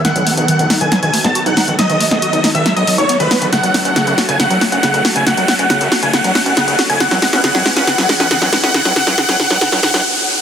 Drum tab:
HH |xxoxxxoxxxoxxxox|xxoxxxoxxxoxxxox|xxoxxxoxxxoxxxox|xxoxxxoxxxoxxxox|
SD |o-----o-o--o--o-|o--o--o-o-----o-|o-o-o-o-o-o-o-o-|o-o-o-o-o-o-o-o-|

HH |xxoxxxoxxxoxxxox|xxoxxxoxxxox----|
SD |oooooooooooooooo|oooooooooooo----|